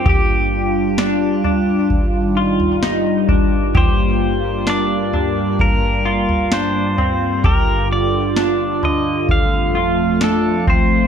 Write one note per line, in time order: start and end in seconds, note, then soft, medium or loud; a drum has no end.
0.00 7.41 G2 medium
0.00 9.25 G3 medium
0.00 0.09 G4 medium
0.06 1.89 D4 medium
0.06 3.71 F4 medium
0.06 0.98 G4 medium
0.06 1.88 G4 medium
0.06 kick medium
0.06 floor tom medium
0.98 1.43 D4 medium
0.98 snare loud
1.44 2.37 D4 medium
1.44 floor tom medium
1.90 3.73 D#3 medium
1.90 kick medium
1.90 floor tom soft
2.37 2.83 F4 medium
2.60 floor tom soft
2.83 3.28 D#4 medium
2.83 snare medium
3.29 3.75 D4 medium
3.29 kick medium
3.29 floor tom medium
3.75 7.40 A#3 medium
3.75 11.07 F4 medium
3.75 4.67 G4 medium
3.75 4.69 C5 medium
3.75 kick medium
3.75 floor tom medium
4.67 5.13 D4 medium
4.67 5.64 D5 medium
4.67 snare loud
5.13 6.06 D4 medium
5.13 floor tom medium
5.59 6.53 A#4 medium
5.59 kick medium
5.59 floor tom medium
6.05 6.52 F4 medium
6.29 floor tom soft
6.52 6.98 D4 medium
6.52 7.45 C5 medium
6.52 snare loud
6.98 7.44 C4 medium
6.98 floor tom medium
7.44 9.27 G2 medium
7.44 9.27 D3 medium
7.44 8.37 G4 medium
7.44 7.88 A#4 medium
7.44 kick medium
7.44 floor tom medium
7.92 8.85 D5 medium
8.36 8.83 D4 medium
8.36 snare loud
8.83 9.75 D3 medium
8.83 9.31 D#5 medium
8.83 floor tom medium
9.28 11.07 F2 medium
9.28 11.07 F3 medium
9.28 11.07 A3 medium
9.28 10.65 F5 medium
9.28 kick medium
9.28 floor tom medium
9.75 10.21 F4 medium
10.21 10.67 D4 medium
10.21 10.66 A4 medium
10.21 snare loud
10.67 11.07 C4 medium
10.67 11.07 C5 medium
10.67 kick medium
10.67 floor tom medium